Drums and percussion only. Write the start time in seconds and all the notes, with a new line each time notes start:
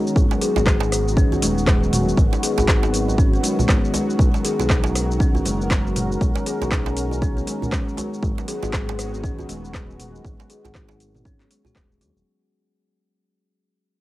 0.07 shaker
0.16 kick, shaker
0.31 djembe slap, shaker
0.42 open hi-hat, shaker
0.56 djembe slap, djembe tone, shaker
0.66 kick, cross-stick, clap, shaker
0.80 djembe slap, shaker
0.92 cross-stick, open hi-hat, shaker
1.08 shaker
1.17 kick, shaker
1.33 djembe bass, shaker
1.42 open hi-hat, djembe tone, shaker
1.58 shaker
1.67 kick, cross-stick, clap, shaker
1.83 shaker
1.93 mid tom, open hi-hat, shaker
2.09 shaker
2.17 kick, shaker
2.33 djembe slap, shaker
2.43 open hi-hat, shaker
2.58 djembe slap, djembe tone, djembe bass, shaker
2.68 kick, cross-stick, clap, shaker
2.83 djembe slap, shaker
2.94 open hi-hat, shaker
3.08 djembe tone, shaker
3.18 kick, shaker
3.35 shaker
3.44 open hi-hat, shaker
3.59 mid tom, djembe bass, shaker
3.69 kick, cross-stick, clap, shaker
3.85 shaker
3.94 open hi-hat, djembe tone, shaker
4.10 shaker
4.19 kick, shaker
4.34 djembe slap, shaker
4.45 open hi-hat, shaker
4.59 djembe slap, djembe tone, shaker
4.70 kick, cross-stick, clap, shaker
4.84 djembe slap, shaker
4.95 cross-stick, open hi-hat, shaker
5.11 shaker
5.20 kick, shaker
5.35 djembe bass, shaker
5.45 open hi-hat, djembe tone, shaker
5.61 shaker
5.71 kick, cross-stick, clap, shaker
5.87 shaker
5.96 mid tom, open hi-hat, shaker
6.12 shaker
6.21 kick, shaker
6.35 djembe slap, shaker
6.46 open hi-hat, shaker
6.62 djembe slap, djembe tone, djembe bass, shaker
6.71 kick, cross-stick, clap, shaker
6.86 djembe slap, shaker
6.97 open hi-hat, shaker
7.11 djembe tone, shaker
7.22 kick, shaker
7.38 shaker
7.47 open hi-hat, shaker
7.62 mid tom, djembe bass, shaker
7.72 kick, cross-stick, clap, shaker
7.88 shaker
7.97 open hi-hat, djembe tone, shaker
8.14 shaker
8.23 kick, shaker
8.38 djembe slap, shaker
8.48 open hi-hat, shaker
8.63 djembe slap, djembe tone, shaker
8.73 kick, cross-stick, clap, shaker
8.89 djembe slap, shaker
8.99 cross-stick, open hi-hat, shaker
9.14 shaker
9.24 kick, shaker
9.39 djembe bass, shaker
9.49 open hi-hat, djembe tone, shaker
9.65 shaker
9.74 kick, cross-stick, clap, shaker
9.90 shaker
10.00 mid tom, open hi-hat, shaker
10.15 shaker
10.25 kick, shaker
10.40 djembe slap, shaker
10.50 open hi-hat, shaker
10.65 djembe slap, djembe tone, djembe bass, shaker
10.75 kick, cross-stick, clap, shaker
10.89 djembe slap, shaker
11.00 open hi-hat, shaker
11.15 mid tom, djembe tone, shaker
11.25 kick, shaker
11.41 clap, shaker
11.51 open hi-hat, shaker
11.65 mid tom, djembe bass, shaker
11.76 kick, cross-stick, clap, shaker
11.92 shaker
12.01 open hi-hat, djembe tone, shaker
12.17 shaker